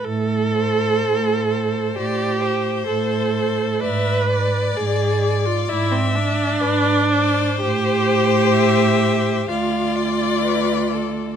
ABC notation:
X:1
M:4/4
L:1/16
Q:1/4=64
K:Am
V:1 name="Violin"
z2 c4 c4 c4 c2 | d2 d4 d4 d4 d2 | c8 d8 |]
V:2 name="Violin"
z8 d2 c6 | e2 d6 e4 B2 c2- | c4 e4 f2 d2 B2 A2 |]
V:3 name="Viola"
A8 G4 A4 | B4 ^G3 F E C D6 | G8 F8 |]
V:4 name="Cello" clef=bass
A,,4 A,,4 A,,4 A,,4 | ^G,,4 G,,4 G,,4 G,,4 | A,,8 D,,8 |]